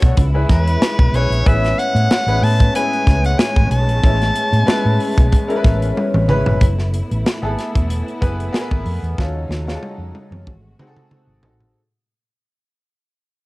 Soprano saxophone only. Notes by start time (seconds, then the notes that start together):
Already playing: C#5
0.51 B4
1.15 C#5
1.47 E5
1.79 F#5
2.44 A5
2.76 G#5
3.26 F#5
3.39 G#5
3.71 A5